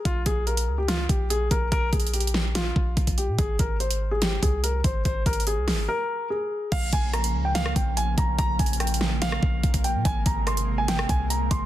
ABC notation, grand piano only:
X:1
M:4/4
L:1/16
Q:1/4=144
K:Bbdor
V:1 name="Grand piano"
F2 A2 B3 G F2 G2 A2 B2 | B2 A2 G4 F6 G2 | A2 B2 c3 A G2 A2 B2 c2 | c2 B2 A4 B4 A4 |
f2 a2 b3 g f2 g2 a2 b2 | b2 a2 g4 f6 g2 | a2 b2 c'3 a g2 a2 b2 c'2 |]